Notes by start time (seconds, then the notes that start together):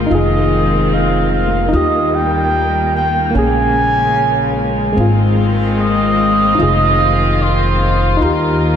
Already playing: G#3 A#3 C4 F4 A#4
0.07 D#3 C4 D#4 F4
0.11 F1 G#4 D#5
0.94 F5
1.35 F5
1.69 D#3 G3 D#4
1.73 D#2 A#3 F4 G4 D#5
2.15 G5
2.97 G5
3.31 C#3 G#3 A#3
3.35 A#1 C#4 G#4 G#5
4.93 D#3 G#3 C4 F4
4.97 G#1 F4
5.80 D#5
6.55 D#3 D#4 F4
6.60 F1 G#4 D#5
7.42 C5
8.17 D#4 F4
8.21 D#2 D#3 G3 A#3 G4 A#4